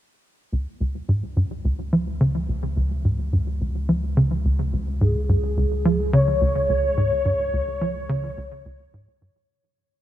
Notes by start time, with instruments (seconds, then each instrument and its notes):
0.52 sub bass C#2, analog synth bass C#2
0.80 analog synth bass C#2
1.09 analog synth bass G#2
1.36 analog synth bass G2
1.65 analog synth bass C#2
1.93 analog synth bass F3
2.21 analog synth bass C#3
2.49 analog synth bass C#2
2.76 analog synth bass C#2
3.05 analog synth bass G#2
3.33 analog synth bass G2
3.61 analog synth bass C#2
3.89 analog synth bass F3
4.17 analog synth bass C#3
4.45 analog synth bass C#2
4.73 analog synth bass C#2
5.01 analog synth bass G#2, analog synth lead G#4
5.29 analog synth bass G2
5.57 analog synth bass C#2
5.85 analog synth bass F3
6.13 analog synth bass C#3, analog synth lead C#5
6.41 analog synth bass C#2
6.69 analog synth bass C#2
6.97 analog synth bass G#2
7.25 analog synth bass G2
7.53 analog synth bass C#2
7.81 analog synth bass F3
8.09 analog synth bass C#3
8.37 analog synth bass C#2
8.65 analog synth bass C#2
8.94 analog synth bass G#2
9.22 analog synth bass G2